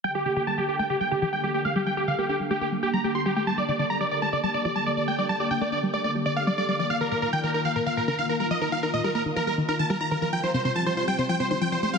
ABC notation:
X:1
M:4/4
L:1/16
Q:1/4=140
K:Gm
V:1 name="Supersaw synth"
g G G G a G G g G g G G g G G f | G g G f G G z G G z G b G c' G G | a d d d b d d a d a d d a d d g | d a d g d d z d d z d f d d d d |
f B B B g B B f B f B B f B B e | B f B e B B z B B z B a B b B B | g c c c a c c g c g c c g c c f |]
V:2 name="Analog synth pad"
[D,B,GA]2 [D,B,GA] [D,B,GA] [D,B,GA]2 [D,B,GA]2 [D,B,GA] [D,B,GA] [D,B,GA]2 [D,B,GA]2 [D,B,GA]2 | [D,B,GA]2 [D,B,GA] [D,B,GA] [D,B,GA]2 [D,B,GA]2 [D,B,GA] [D,B,GA] [D,B,GA]2 [D,B,GA]2 [D,B,GA]2 | [D,B,GA]2 [D,B,GA] [D,B,GA] [D,B,GA]2 [D,B,GA]2 [D,B,GA] [D,B,GA] [D,B,GA]2 [D,B,GA]2 [D,B,GA]2 | [D,B,GA]2 [D,B,GA] [D,B,GA] [D,B,GA]2 [D,B,GA]2 [D,B,GA] [D,B,GA] [D,B,GA]2 [D,B,GA]2 [D,B,GA]2 |
[E,B,FB]2 [E,B,FB] [E,B,FB] [E,B,FB]2 [E,B,FB]2 [E,B,FB] [E,B,FB] [E,B,FB]2 [E,B,FB]2 [E,B,FB]2 | [E,B,FB]2 [E,B,FB] [E,B,FB] [E,B,FB]2 [E,B,FB]2 [E,B,FB] [E,B,FB] [E,B,FB]2 [E,B,FB]2 [E,B,FB]2 | [G,CFc]2 [G,CFc] [G,CFc] [G,CFc]2 [G,CFc]2 [G,CFc] [G,CFc] [G,CFc]2 [G,CFc]2 [G,CFc]2 |]
V:3 name="Synth arpeggio sound" clef=bass
G, G, D, D, G, G, G A, D, G, D, F, G, G, B, A, | G, G, G D, B, D G, A, B, G, G G, B, G G, A, | G, G, D, D, G, G, G A, D, G, D, F, G, G, B, A, | G, G, G D, B, D G, A, B, G, D, B, G, G, G, F, |
E, E, B,, B,, E, E, E F, B,, E, B,, D, E, E, G, F, | E, E, E B,, G, B, E, F, G, E, E E, G, E E, F, | F, F, C, C, F, F, F G, C, F, C, E, F, F, A, G, |]